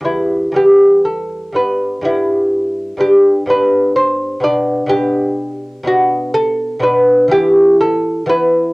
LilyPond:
<<
  \new Staff \with { instrumentName = "Lute" } { \time 3/4 \key e \minor \tempo 4 = 124 e'4 g'4 a'4 | b'4 e'2 | g'4 b'4 c''4 | d''4 g'2 |
\key g \lydian fis'4 a'4 b'4 | g'4 a'4 b'4 | }
  \new Staff \with { instrumentName = "Lute" } { \time 3/4 \key e \minor <e, g b>4 <e, g b>2 | <g, g b>4 <g, g b>2 | <g, b d'>4 <g, b d'>2 | <b, b d'>4 <b, b d'>2 |
\key g \lydian <b, b d'>2 <b, b d'>4 | <e b e'>2 <e b e'>4 | }
>>